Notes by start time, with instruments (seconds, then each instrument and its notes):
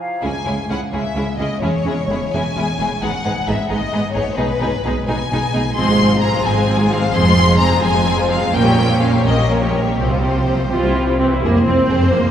0.00 flute F5
0.22 cello section C#2, double bass section C#2, viola section G#3 C#4, violin section E4 G#4 G#5
0.45 cello section C#2, double bass section C#2, viola section G#3 C#4, violin section E4 G#4
0.69 cello section C#2, double bass section C#2, viola section G#3 C#4, violin section E4 G#4 F#5
0.92 cello section C#2, double bass section C#2, viola section G#3 C#4, violin section E4 G#4 E5
1.15 double bass section C#2, cello section C#2, viola section G#3 C#4, violin section E4 G#4
1.38 cello section C#2, double bass section C#2, viola section G#3 C#4, violin section E4 G#4 D#5
1.61 double bass section E1, cello section E2, viola section G#3 C#4, violin section E4 G#4 C#5
1.85 double bass section E1, cello section E2, viola section G#3 C#4, violin section E4 G#4
2.09 double bass section E1, cello section E2, viola section G#3 C#4, violin section E4 G#4
2.33 double bass section E1, cello section E2, viola section G#3 C#4, violin section E4 G#4 G#5
2.56 double bass section E1, cello section E2, viola section G#3 C#4, violin section E4 G#4
2.79 double bass section E1, cello section E2, viola section G#3 C#4, violin section E4 G#4
3.02 double bass section G#1, cello section G#2, viola section G#3 B3, violin section D#4 G#4 F#5
3.25 double bass section G#1, cello section G#2, viola section G#3 B3, violin section D#4 G#4
3.48 double bass section G#1, cello section G#2, viola section G#3 B3, violin section D#4 G#4 E5
3.69 double bass section G#1, cello section G#2, viola section G#3 B3, violin section D#4 G#4 D#5
3.93 double bass section G#1, cello section G#2, viola section G#3 B3, violin section D#4 G#4
4.13 double bass section G#1, cello section G#2, viola section G#3 B3, violin section D#4 G#4 C#5
4.35 double bass section B1, cello section B2, viola section G#3 D#4, violin section D#4 G#4 B4
4.61 double bass section B1, cello section B2, viola section G#3 D#4, violin section D#4 G#4
4.85 double bass section B1, cello section B2, viola section G#3 D#4, violin section D#4 G#4
5.08 double bass section B1, cello section B2, viola section G#3 D#4, violin section D#4 G#4 G#5
5.32 double bass section B1, cello section B2, viola section G#3 D#4, violin section D#4 G#4
5.54 double bass section B1, cello section B2, viola section G#3 D#4, violin section D#4 G#4
5.75 double bass section G#1, cello section G#2, viola section F3 C4, violin section G#4 C6
5.89 viola section G#3, violin section F4 C5
6.00 viola section F3 C4, violin section G#4
6.12 viola section G#3, violin section F4 C5
6.21 viola section F3 C4, violin section G#4 A#5
6.33 viola section G#3, violin section F4 C5
6.44 double bass section G#1, cello section G#2, viola section F3 C4, violin section G#4 G#5
6.55 viola section G#3, violin section F4 C5
6.67 viola section F3 C4, violin section G#4
6.78 viola section G#3, violin section F4 C5
6.91 viola section F3 C4, violin section G#4 F5
7.02 viola section G#3, violin section F4 C5
7.13 double bass section F1, cello section F2, viola section F3 C4, violin section G#4 C6
7.25 viola section G#3, violin section F4 C5
7.35 viola section F3 C4, violin section G#4
7.47 viola section G#3, violin section F4 C5
7.58 viola section F3 C4, violin section G#4 A#5
7.71 viola section G#3, violin section F4 C5
7.82 double bass section F1, cello section F2, viola section F3 C4, violin section G#4 G#5
7.93 viola section G#3, violin section F4 C5
8.04 viola section F3 C4, violin section G#4
8.16 viola section G#3, violin section F4 C5
8.28 viola section F3 C4, violin section G#4 F5
8.40 viola section G#3, violin section F4 C5
8.52 double bass section A#1, cello section A#2, viola section A#3 C#4, violin section A#4 G5
8.64 viola section G3 A#3, violin section G4 C#5
8.77 viola section A#3 C#4, violin section A#4
8.88 viola section G3 A#3, violin section G4 C#5
8.99 viola section A#3 C#4, violin section A#4 F5
9.12 viola section G3 A#3, violin section G4 C#5
9.24 double bass section A#1, cello section A#2, viola section A#3 C#4, violin section A#4 D#5
9.36 viola section G3 A#3, violin section G4 C#5
9.48 viola section A#3 C#4, violin section A#4 C#5
9.61 viola section G3 A#3, violin section G4 C#5
9.72 viola section A#3 C#4, violin section A#4
9.84 viola section G3 A#3, violin section G4 C#5
9.97 double bass section C2, cello section C3, viola section F3 C4, violin section G4 C5
10.09 viola section F3 G3, violin section F4
10.22 viola section F3 C4, violin section G4
10.33 viola section F3 G3, violin section F4
10.46 viola section F3 C4, violin section G4
10.57 viola section F3 G3, violin section F4
10.69 double bass section C2, cello section C3, viola section E3 C4 F4, violin section G4
10.82 viola section G3 E4, violin section E4 C5
10.95 viola section E3 C4, violin section G4
11.07 viola section G3 E4, violin section E4 C5
11.20 viola section E3 C4, violin section G4
11.32 viola section G3 E4, violin section E4 C5
11.42 double bass section F1, cello section F2, timpani F2, viola section A#3, violin section G#4 C5
11.55 cello section F2, violin section G#4
11.65 double bass section F1, cello section F2, viola section C4, violin section G#4
11.89 double bass section F1, cello section F2, violin section G#4
12.00 cello section F2, violin section G#4
12.11 double bass section F1, cello section F2, viola section A#3, violin section G#4
12.23 cello section F2, violin section G#4